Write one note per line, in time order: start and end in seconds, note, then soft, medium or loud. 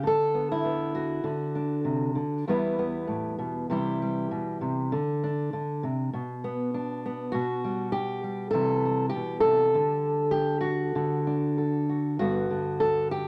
0.03 1.23 D3 medium
0.03 0.51 A4 loud
0.34 0.64 B3 soft
0.52 1.26 E4 medium
0.65 0.94 B3 soft
0.95 2.48 F#4 medium
1.24 2.14 D3 medium
1.55 2.44 D4 soft
1.85 2.16 C3 medium
2.15 2.47 D3 medium
2.48 3.71 E2 medium
2.48 3.67 G3 medium
2.48 2.78 B3 medium
2.48 3.68 E4 medium
2.48 3.68 B4 medium
2.79 3.67 B3 medium
3.07 3.38 A2 medium
3.39 3.69 B2 medium
3.70 4.31 C3 medium
3.70 4.89 E3 medium
3.70 4.01 G3 medium
3.70 4.90 E4 medium
3.70 4.90 G4 medium
4.02 4.93 G3 medium
4.31 4.61 B2 medium
4.61 4.92 C3 medium
4.92 5.52 D3 medium
5.24 6.10 D4 medium
5.53 5.84 D3 medium
5.83 6.13 C3 medium
6.13 7.30 B2 medium
6.44 7.04 B3 medium
6.74 7.31 D4 medium
7.06 7.31 B3 medium
7.32 8.51 B2 medium
7.32 7.92 F#4 loud
7.64 8.22 G3 soft
7.92 8.50 G4 loud
8.24 8.53 G3 soft
8.51 9.14 C3 medium
8.51 9.71 E3 soft
8.51 8.84 G3 soft
8.51 9.09 A4 loud
8.85 11.27 G3 soft
9.09 9.40 G4 medium
9.15 9.44 B2 medium
9.40 9.74 C3 medium
9.40 10.94 A4 loud
9.74 10.94 D3 medium
10.31 10.60 G4 medium
10.61 11.88 F#4 medium
10.95 12.20 D3 medium
11.27 12.16 D4 soft
11.58 12.16 A4 soft
11.89 12.16 F#4 soft
12.19 13.28 G2 medium
12.19 12.49 D3 soft
12.19 13.28 B3 soft
12.19 13.28 F#4 medium
12.50 13.28 D3 medium
12.80 13.11 A4 loud
13.11 13.28 G4 loud